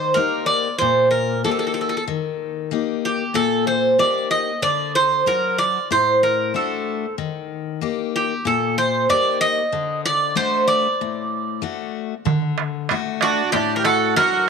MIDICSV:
0, 0, Header, 1, 5, 480
1, 0, Start_track
1, 0, Tempo, 636943
1, 1562, Time_signature, 4, 2, 24, 8
1, 10921, End_track
2, 0, Start_track
2, 0, Title_t, "Bouzouki"
2, 0, Program_c, 0, 25
2, 0, Note_on_c, 0, 72, 81
2, 107, Note_on_c, 0, 70, 87
2, 119, Note_off_c, 0, 72, 0
2, 336, Note_off_c, 0, 70, 0
2, 348, Note_on_c, 0, 74, 82
2, 588, Note_off_c, 0, 74, 0
2, 591, Note_on_c, 0, 72, 81
2, 831, Note_off_c, 0, 72, 0
2, 834, Note_on_c, 0, 70, 74
2, 1061, Note_off_c, 0, 70, 0
2, 1088, Note_on_c, 0, 69, 68
2, 1131, Note_off_c, 0, 69, 0
2, 1140, Note_on_c, 0, 69, 46
2, 1189, Note_off_c, 0, 69, 0
2, 1198, Note_on_c, 0, 69, 52
2, 1249, Note_off_c, 0, 69, 0
2, 1257, Note_on_c, 0, 69, 45
2, 1301, Note_off_c, 0, 69, 0
2, 1311, Note_on_c, 0, 69, 54
2, 1354, Note_off_c, 0, 69, 0
2, 1363, Note_on_c, 0, 69, 50
2, 1416, Note_off_c, 0, 69, 0
2, 1426, Note_on_c, 0, 69, 60
2, 1476, Note_off_c, 0, 69, 0
2, 1484, Note_on_c, 0, 69, 52
2, 1533, Note_off_c, 0, 69, 0
2, 2299, Note_on_c, 0, 67, 71
2, 2515, Note_off_c, 0, 67, 0
2, 2526, Note_on_c, 0, 69, 82
2, 2763, Note_off_c, 0, 69, 0
2, 2766, Note_on_c, 0, 72, 80
2, 3006, Note_off_c, 0, 72, 0
2, 3009, Note_on_c, 0, 74, 87
2, 3230, Note_off_c, 0, 74, 0
2, 3246, Note_on_c, 0, 75, 89
2, 3483, Note_off_c, 0, 75, 0
2, 3486, Note_on_c, 0, 74, 90
2, 3708, Note_off_c, 0, 74, 0
2, 3732, Note_on_c, 0, 72, 86
2, 3951, Note_off_c, 0, 72, 0
2, 3974, Note_on_c, 0, 70, 88
2, 4192, Note_off_c, 0, 70, 0
2, 4208, Note_on_c, 0, 74, 83
2, 4429, Note_off_c, 0, 74, 0
2, 4459, Note_on_c, 0, 72, 86
2, 4675, Note_off_c, 0, 72, 0
2, 4695, Note_on_c, 0, 70, 76
2, 4913, Note_off_c, 0, 70, 0
2, 4942, Note_on_c, 0, 69, 69
2, 5382, Note_off_c, 0, 69, 0
2, 6147, Note_on_c, 0, 67, 74
2, 6379, Note_off_c, 0, 67, 0
2, 6382, Note_on_c, 0, 69, 74
2, 6596, Note_off_c, 0, 69, 0
2, 6616, Note_on_c, 0, 72, 85
2, 6833, Note_off_c, 0, 72, 0
2, 6857, Note_on_c, 0, 74, 92
2, 7073, Note_off_c, 0, 74, 0
2, 7091, Note_on_c, 0, 75, 98
2, 7536, Note_off_c, 0, 75, 0
2, 7578, Note_on_c, 0, 74, 94
2, 7794, Note_off_c, 0, 74, 0
2, 7813, Note_on_c, 0, 72, 85
2, 8031, Note_off_c, 0, 72, 0
2, 8046, Note_on_c, 0, 74, 80
2, 8732, Note_off_c, 0, 74, 0
2, 9965, Note_on_c, 0, 66, 84
2, 10187, Note_off_c, 0, 66, 0
2, 10190, Note_on_c, 0, 67, 81
2, 10366, Note_off_c, 0, 67, 0
2, 10369, Note_on_c, 0, 70, 60
2, 10429, Note_off_c, 0, 70, 0
2, 10436, Note_on_c, 0, 69, 86
2, 10659, Note_off_c, 0, 69, 0
2, 10674, Note_on_c, 0, 70, 100
2, 10915, Note_off_c, 0, 70, 0
2, 10921, End_track
3, 0, Start_track
3, 0, Title_t, "Accordion"
3, 0, Program_c, 1, 21
3, 9962, Note_on_c, 1, 62, 70
3, 10182, Note_off_c, 1, 62, 0
3, 10206, Note_on_c, 1, 62, 73
3, 10376, Note_off_c, 1, 62, 0
3, 10391, Note_on_c, 1, 67, 54
3, 10437, Note_off_c, 1, 67, 0
3, 10442, Note_on_c, 1, 66, 76
3, 10662, Note_off_c, 1, 66, 0
3, 10677, Note_on_c, 1, 66, 81
3, 10899, Note_off_c, 1, 66, 0
3, 10921, End_track
4, 0, Start_track
4, 0, Title_t, "Steel-string acoustic guitar"
4, 0, Program_c, 2, 25
4, 0, Note_on_c, 2, 51, 59
4, 108, Note_off_c, 2, 51, 0
4, 120, Note_on_c, 2, 58, 45
4, 123, Note_on_c, 2, 63, 43
4, 127, Note_on_c, 2, 67, 44
4, 504, Note_off_c, 2, 58, 0
4, 507, Note_off_c, 2, 67, 0
4, 508, Note_off_c, 2, 63, 0
4, 612, Note_on_c, 2, 46, 55
4, 1073, Note_off_c, 2, 46, 0
4, 1088, Note_on_c, 2, 58, 44
4, 1092, Note_on_c, 2, 63, 34
4, 1096, Note_on_c, 2, 67, 52
4, 1470, Note_off_c, 2, 58, 0
4, 1470, Note_off_c, 2, 63, 0
4, 1475, Note_off_c, 2, 67, 0
4, 1564, Note_on_c, 2, 51, 59
4, 2029, Note_off_c, 2, 51, 0
4, 2043, Note_on_c, 2, 58, 44
4, 2048, Note_on_c, 2, 63, 42
4, 2054, Note_on_c, 2, 67, 46
4, 2427, Note_off_c, 2, 58, 0
4, 2431, Note_off_c, 2, 63, 0
4, 2432, Note_off_c, 2, 67, 0
4, 2518, Note_on_c, 2, 46, 64
4, 2986, Note_off_c, 2, 46, 0
4, 3004, Note_on_c, 2, 58, 42
4, 3008, Note_on_c, 2, 63, 33
4, 3012, Note_on_c, 2, 67, 48
4, 3388, Note_off_c, 2, 58, 0
4, 3389, Note_off_c, 2, 63, 0
4, 3393, Note_off_c, 2, 67, 0
4, 3483, Note_on_c, 2, 50, 61
4, 3949, Note_off_c, 2, 50, 0
4, 3965, Note_on_c, 2, 54, 38
4, 3970, Note_on_c, 2, 66, 52
4, 3973, Note_on_c, 2, 62, 34
4, 4350, Note_off_c, 2, 54, 0
4, 4351, Note_off_c, 2, 62, 0
4, 4351, Note_off_c, 2, 66, 0
4, 4450, Note_on_c, 2, 45, 53
4, 4913, Note_off_c, 2, 45, 0
4, 4929, Note_on_c, 2, 57, 49
4, 4933, Note_on_c, 2, 62, 43
4, 4940, Note_on_c, 2, 66, 45
4, 5312, Note_off_c, 2, 57, 0
4, 5312, Note_off_c, 2, 62, 0
4, 5313, Note_off_c, 2, 66, 0
4, 5411, Note_on_c, 2, 51, 64
4, 5873, Note_off_c, 2, 51, 0
4, 5889, Note_on_c, 2, 58, 47
4, 5895, Note_on_c, 2, 63, 37
4, 5898, Note_on_c, 2, 67, 47
4, 6271, Note_off_c, 2, 58, 0
4, 6273, Note_off_c, 2, 63, 0
4, 6276, Note_off_c, 2, 67, 0
4, 6369, Note_on_c, 2, 46, 56
4, 6831, Note_off_c, 2, 46, 0
4, 6852, Note_on_c, 2, 58, 47
4, 6854, Note_on_c, 2, 63, 40
4, 6861, Note_on_c, 2, 67, 55
4, 7232, Note_off_c, 2, 63, 0
4, 7233, Note_off_c, 2, 58, 0
4, 7237, Note_off_c, 2, 67, 0
4, 7329, Note_on_c, 2, 50, 57
4, 7791, Note_off_c, 2, 50, 0
4, 7803, Note_on_c, 2, 57, 49
4, 7807, Note_on_c, 2, 62, 40
4, 7807, Note_on_c, 2, 66, 46
4, 8186, Note_off_c, 2, 57, 0
4, 8187, Note_off_c, 2, 66, 0
4, 8189, Note_off_c, 2, 62, 0
4, 8298, Note_on_c, 2, 45, 55
4, 8755, Note_off_c, 2, 45, 0
4, 8755, Note_on_c, 2, 57, 50
4, 8761, Note_on_c, 2, 62, 37
4, 8764, Note_on_c, 2, 66, 54
4, 9141, Note_off_c, 2, 57, 0
4, 9143, Note_off_c, 2, 62, 0
4, 9146, Note_off_c, 2, 66, 0
4, 9234, Note_on_c, 2, 50, 58
4, 9701, Note_off_c, 2, 50, 0
4, 9725, Note_on_c, 2, 57, 45
4, 9728, Note_on_c, 2, 62, 36
4, 9731, Note_on_c, 2, 66, 56
4, 10105, Note_off_c, 2, 62, 0
4, 10106, Note_off_c, 2, 57, 0
4, 10109, Note_off_c, 2, 66, 0
4, 10197, Note_on_c, 2, 45, 64
4, 10661, Note_off_c, 2, 45, 0
4, 10676, Note_on_c, 2, 54, 46
4, 10679, Note_on_c, 2, 62, 43
4, 10683, Note_on_c, 2, 66, 56
4, 10921, Note_off_c, 2, 54, 0
4, 10921, Note_off_c, 2, 62, 0
4, 10921, Note_off_c, 2, 66, 0
4, 10921, End_track
5, 0, Start_track
5, 0, Title_t, "Darbuka"
5, 9242, Note_on_c, 9, 64, 87
5, 9318, Note_off_c, 9, 64, 0
5, 9359, Note_on_c, 9, 63, 25
5, 9434, Note_off_c, 9, 63, 0
5, 9477, Note_on_c, 9, 63, 69
5, 9553, Note_off_c, 9, 63, 0
5, 9714, Note_on_c, 9, 63, 77
5, 9789, Note_off_c, 9, 63, 0
5, 9836, Note_on_c, 9, 63, 26
5, 9911, Note_off_c, 9, 63, 0
5, 9953, Note_on_c, 9, 63, 76
5, 10029, Note_off_c, 9, 63, 0
5, 10193, Note_on_c, 9, 63, 70
5, 10269, Note_off_c, 9, 63, 0
5, 10433, Note_on_c, 9, 63, 73
5, 10508, Note_off_c, 9, 63, 0
5, 10676, Note_on_c, 9, 63, 69
5, 10751, Note_off_c, 9, 63, 0
5, 10798, Note_on_c, 9, 63, 25
5, 10873, Note_off_c, 9, 63, 0
5, 10921, End_track
0, 0, End_of_file